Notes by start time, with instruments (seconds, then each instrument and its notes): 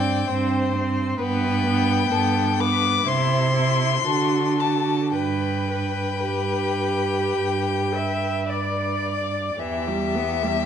Already playing: cello G2, viola C4, violin D5 G5
0.28 cello G2, viola C4, violin C5
0.75 viola C4
1.19 cello G2, viola B3, violin B4 G5
1.66 viola B3
2.11 cello G2, viola B3, violin A4
2.59 viola B3, violin B4 D6
3.05 cello C3, viola E4, violin C5 C6
3.54 viola E4
4.04 cello D3, viola F#4, violin A4
4.58 viola F#4, violin A5
5.13 cello G2, violin B4 G5, viola B4
5.71 viola B4
6.28 cello G2, viola G4
7.38 cello G2
7.94 viola E5
8.47 cello G2, violin D5, viola D5
9.58 cello E2, viola E3, violin G4 E5
9.87 viola G3
10.16 viola B3
10.43 viola G3